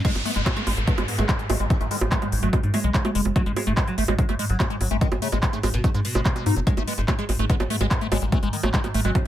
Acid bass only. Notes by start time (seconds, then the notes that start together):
0.05 G#3
0.25 A3
0.36 G#3
0.56 A3
0.67 G#3
0.88 A3
0.98 G#3
1.19 A3
1.29 G#3
1.50 A3
1.60 G#3
1.81 A3
1.91 G#3
2.12 A3
2.22 G#3
2.43 A3
2.53 G#3
2.74 A3
2.84 G#3
3.05 A3
3.15 G#3
3.36 A3
3.46 G#3
3.67 A3
3.77 G#3
3.98 A3
4.08 G#3
4.29 A3
4.39 G#3
4.60 A3
4.70 G#3
4.91 A3
5.01 G#3
5.22 A3
5.32 G#3
5.53 A3
5.63 G#3
5.84 A3
5.94 G#3
6.15 G#3
6.25 A3
6.36 G#3
6.46 D#4
6.57 F#3
6.67 G#3
6.77 A3
6.88 G#3
6.98 G#3
7.08 A3
7.19 G#3
7.29 G#3
7.39 A3
7.50 G#3
7.60 G#3
7.70 A3
7.81 G#3
7.91 G#3
8.01 A3
8.12 G#3
8.22 G#3
8.32 A3
8.43 G#3
8.53 G#3
8.63 A3
8.74 G#3
8.84 G#3
8.94 A3
9.05 G#3
9.15 G#3